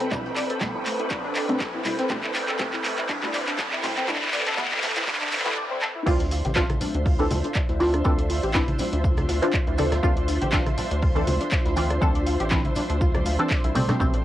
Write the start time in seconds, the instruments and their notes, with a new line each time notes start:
Already playing: string machine C4 A4 B4 G5, violin section B4 B5, riser
0.00 synth pluck C4, closed hi-hat
0.11 analog synth bass A1, synth stab B2 G3 A3 E4, synth pluck D4, kick, clap, closed hi-hat, shaker
0.25 synth pluck E4, closed hi-hat
0.36 synth pluck D5, clap, open hi-hat, shaker
0.50 analog synth bass E1, synth pluck A4, closed hi-hat
0.61 synth stab B2 G3 A3 B3, kick, snare, clap, closed hi-hat, shaker
0.75 synth pluck E4
0.86 synth pluck A3, snare, clap, open hi-hat, shaker
1.00 analog synth bass A1, synth pluck E4, closed hi-hat
1.10 synth pluck D4, kick, clap, closed hi-hat, shaker
1.24 synth pluck D4, closed hi-hat
1.35 analog synth bass A1, synth pluck D5, clap, open hi-hat, shaker
1.48 synth stab B2 G3 A3 C4, synth pluck D4, closed hi-hat
1.60 synth pluck A4, kick, snare, clap, closed hi-hat, shaker
1.74 analog synth bass A1, synth pluck E4
1.85 synth stab B2 G3 A3 E4, synth pluck E4, clap, open hi-hat, shaker
1.99 synth pluck C4, snare, closed hi-hat
2.09 analog synth bass A1, synth stab B2 G3 A3 C4, synth pluck D4, kick, clap, closed hi-hat, shaker
2.23 synth pluck E4, clap
2.35 synth pluck D5, snare, clap, open hi-hat, shaker
2.48 analog synth bass E1, synth pluck A4, clap, closed hi-hat
2.59 synth stab B2 G3 A3 C4, synth pluck A4, kick, snare, clap, closed hi-hat, shaker
2.73 synth pluck E4, clap, closed hi-hat
2.84 synth pluck A3, clap, open hi-hat, shaker
2.98 analog synth bass A1, synth pluck E4, clap, closed hi-hat
3.09 synth pluck D4, kick, clap, closed hi-hat, open hi-hat
3.22 synth stab B2 G3 A3 E4, synth pluck D4, clap
3.33 analog synth bass A1, synth pluck D5, clap, open hi-hat, shaker
3.47 synth pluck D4, clap, closed hi-hat
3.58 synth pluck A4, kick, snare, clap, closed hi-hat, shaker
3.72 analog synth bass A1, synth pluck E4, snare, clap
3.83 synth stab B2 G3 A3 C4, synth pluck E4, clap, open hi-hat, shaker
3.97 synth pluck C4, clap, closed hi-hat
4.08 analog synth bass A1, synth stab B2 G3 A3 E4, synth pluck D4, kick, clap, closed hi-hat, shaker
4.15 clap
4.22 synth pluck E4, clap, closed hi-hat
4.27 clap
4.33 synth pluck D5, clap, open hi-hat, shaker
4.40 clap
4.47 analog synth bass E1, synth pluck A4, clap, closed hi-hat
4.52 clap
4.57 synth stab B2 G3 A3 B3, kick, snare, clap, closed hi-hat, shaker
4.65 clap
4.71 synth pluck E4, clap
4.77 clap
4.82 synth pluck A3, snare, clap, open hi-hat, shaker
4.89 clap
4.96 analog synth bass A1, synth pluck E4, snare, clap, closed hi-hat, shaker
5.02 clap
5.07 synth pluck D4, kick, snare, clap, closed hi-hat, shaker
5.14 clap
5.21 synth pluck D4, clap, closed hi-hat
5.27 clap
5.32 analog synth bass A1, synth pluck D4, clap, open hi-hat, shaker
5.39 clap
5.45 synth stab B2 G3 A3 E4, synth pluck D4, clap, closed hi-hat
5.51 clap
5.57 synth pluck D5
5.71 synth pluck C4
5.82 synth pluck A4, clap
5.95 synth pluck E4
6.06 analog synth bass D2, synth stab E3 C4 D4 F4, synth pluck D4, string machine D4 F4 C5 E5, violin section C5 C6, kick, crash, shaker
6.20 synth pluck D5, closed hi-hat
6.31 synth pluck F4, snare, open hi-hat, shaker
6.45 analog synth bass A1, synth pluck G4, closed hi-hat, high conga
6.56 synth stab E3 C4 D4 F4, synth pluck D4, kick, snare, clap, shaker
6.70 synth pluck E4, cross-stick, closed hi-hat, high conga
6.81 synth pluck D4, open hi-hat, low conga, shaker
6.95 analog synth bass D2, synth pluck D4, closed hi-hat
7.06 synth pluck F4, kick, open hi-hat
7.19 synth stab E3 C4 D4 A4, synth pluck D5, closed hi-hat
7.31 analog synth bass D2, synth pluck F4, open hi-hat, high conga, low conga, shaker
7.44 synth pluck D4, closed hi-hat
7.55 synth pluck D5, kick, snare, clap, shaker
7.69 analog synth bass D2, synth pluck E4, snare, closed hi-hat
7.80 synth stab E3 C4 D4 F4, synth pluck D5, snare, open hi-hat, shaker
7.93 synth pluck D4, cross-stick, closed hi-hat
8.04 analog synth bass D2, synth stab E3 C4 D4 A4, synth pluck D4, kick, shaker
8.19 synth pluck D5, closed hi-hat
8.30 synth pluck F4, open hi-hat
8.43 analog synth bass A1, synth pluck G4, closed hi-hat
8.54 synth stab E3 C4 D4 E4, synth pluck D4, kick, snare, clap, shaker
8.68 synth pluck E4, closed hi-hat, high conga
8.78 synth pluck D4, snare, open hi-hat, low conga, shaker
8.93 analog synth bass D2, synth pluck D4, closed hi-hat
9.04 synth pluck F4, kick, shaker
9.17 synth pluck D5, cross-stick, closed hi-hat, high conga, low conga
9.29 analog synth bass D2, synth pluck F4, snare, open hi-hat, shaker
9.42 synth stab E3 C4 D4 F4, synth pluck D4, closed hi-hat
9.53 synth pluck D5, kick, clap, shaker
9.67 analog synth bass D2, synth pluck E4, closed hi-hat
9.78 synth stab E3 C4 D4 A4, synth pluck D5, open hi-hat, high conga, shaker
9.92 synth pluck D4, cross-stick, snare, closed hi-hat, low conga
10.03 analog synth bass D2, synth stab E3 C4 D4 F4, synth pluck D4, kick, shaker
10.17 synth pluck D5, closed hi-hat
10.28 synth pluck F4, snare, open hi-hat, shaker
10.42 analog synth bass A1, synth pluck G4, closed hi-hat, high conga
10.52 synth stab E3 C4 D4 F4, synth pluck D4, kick, snare, clap, shaker
10.66 synth pluck E4, cross-stick, closed hi-hat, high conga
10.78 synth pluck D4, open hi-hat, low conga, shaker
10.91 analog synth bass D2, synth pluck D4, closed hi-hat
11.02 synth pluck F4, kick, open hi-hat
11.15 synth stab E3 C4 D4 A4, synth pluck D5, closed hi-hat
11.27 analog synth bass D2, synth pluck F4, open hi-hat, high conga, low conga, shaker
11.41 synth pluck D4, closed hi-hat
11.51 synth pluck D5, kick, snare, clap, shaker
11.66 analog synth bass D2, synth pluck E4, snare, closed hi-hat
11.76 synth stab E3 C4 D4 F4, synth pluck D5, open hi-hat, shaker
11.90 synth pluck D4, cross-stick, closed hi-hat
12.01 analog synth bass D2, synth stab E3 C4 D4 A4, synth pluck D4, kick, shaker
12.15 synth pluck D5, closed hi-hat
12.26 synth pluck F4, open hi-hat, shaker
12.40 analog synth bass A1, synth pluck G4, closed hi-hat
12.51 synth stab E3 C4 D4 E4, synth pluck D4, kick, snare, clap, shaker
12.65 synth pluck E4, closed hi-hat, high conga
12.75 synth pluck D4, snare, open hi-hat, low conga, shaker
12.90 analog synth bass D2, synth pluck D4, closed hi-hat
13.01 synth pluck F4, kick, shaker
13.14 synth pluck D5, cross-stick, closed hi-hat, high conga, low conga
13.25 analog synth bass D2, synth pluck F4, open hi-hat, shaker
13.39 synth stab E3 C4 D4 A4, synth pluck D4, closed hi-hat
13.50 synth pluck D5, kick, snare, clap, shaker
13.64 analog synth bass C2, synth pluck E4, closed hi-hat
13.75 synth stab B2 G3 A3 C4, string machine C4 A4 C5 G5, synth pluck D5, open hi-hat, high conga, shaker
13.88 synth stab B2 G3 A3 C4, synth pluck D4, cross-stick, snare, closed hi-hat, low conga
13.99 analog synth bass A1, synth stab B2 G3 A3 C4, synth pluck D4, kick, shaker
14.14 synth pluck D4, closed hi-hat